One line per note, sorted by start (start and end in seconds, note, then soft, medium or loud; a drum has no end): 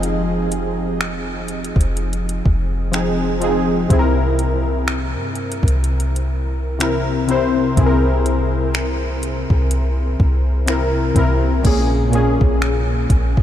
0.00 1.72 F1 loud
0.00 1.38 F3 medium
0.00 1.39 C4 medium
0.00 1.40 D#4 medium
0.00 3.92 G4 medium
0.00 1.40 G#4 loud
0.00 3.92 D#5 medium
0.00 closed hi-hat medium
0.52 closed hi-hat medium
1.01 finger snap loud
1.48 closed hi-hat medium
1.64 closed hi-hat medium
1.76 2.42 F1 medium
1.76 kick medium
1.81 closed hi-hat medium
1.97 closed hi-hat medium
2.13 closed hi-hat medium
2.29 closed hi-hat medium
2.46 3.86 F1 loud
2.46 kick medium
2.92 3.39 F3 medium
2.92 3.39 C4 medium
2.92 3.40 D#4 medium
2.92 finger snap loud
2.92 closed hi-hat medium
2.96 3.41 G#4 medium
3.40 3.87 F3 medium
3.40 3.88 C4 medium
3.40 3.88 D#4 medium
3.40 3.89 G#4 medium
3.40 closed hi-hat medium
3.88 5.17 C2 loud
3.88 5.74 C3 medium
3.88 5.74 C4 medium
3.88 5.75 E4 medium
3.88 kick loud
3.88 closed hi-hat medium
3.93 3.99 G#4 medium
3.99 5.79 A#4 medium
4.39 closed hi-hat medium
4.88 finger snap loud
5.15 5.61 G2 loud
5.35 closed hi-hat medium
5.52 closed hi-hat medium
5.63 7.73 C2 medium
5.63 kick medium
5.68 closed hi-hat medium
5.84 closed hi-hat medium
6.00 closed hi-hat medium
6.16 closed hi-hat medium
6.79 7.26 C3 medium
6.79 7.26 C4 medium
6.79 7.27 E4 medium
6.79 finger snap loud
6.79 closed hi-hat medium
6.83 7.28 A#4 medium
7.27 7.74 C3 medium
7.27 7.75 C4 medium
7.27 7.75 E4 medium
7.27 closed hi-hat medium
7.31 7.76 C5 medium
7.76 9.47 C2 loud
7.76 9.61 C3 medium
7.76 9.61 C4 medium
7.76 9.62 E4 medium
7.76 kick loud
7.76 closed hi-hat medium
7.80 7.86 G#4 medium
7.86 9.66 A#4 medium
8.26 closed hi-hat medium
8.75 finger snap loud
9.23 closed hi-hat medium
9.50 10.16 C2 medium
9.50 kick medium
9.71 closed hi-hat medium
10.20 11.12 C2 loud
10.20 kick medium
10.66 11.13 C3 medium
10.66 11.14 C4 medium
10.66 11.14 E4 medium
10.66 finger snap loud
10.66 closed hi-hat medium
10.70 11.15 A#4 medium
11.14 11.62 C2 loud
11.14 11.61 C3 medium
11.14 11.62 C4 medium
11.14 11.63 E4 medium
11.14 kick loud
11.14 closed hi-hat medium
11.18 11.63 A#4 medium
11.63 12.38 A#1 loud
11.63 12.10 A#2 medium
11.63 12.10 A#3 medium
11.63 12.11 C#4 medium
11.63 kick loud
11.63 closed hi-hat medium
11.63 crash medium
11.67 12.12 G#4 medium
12.11 13.43 A#2 medium
12.11 13.43 A#3 medium
12.11 13.43 C#4 medium
12.11 closed hi-hat medium
12.15 13.43 G#4 loud
12.41 13.07 A#1 loud
12.41 kick medium
12.62 finger snap loud
13.10 13.37 A#1 loud
13.10 kick loud
13.10 closed hi-hat medium
13.37 13.43 A#1 loud
13.37 kick medium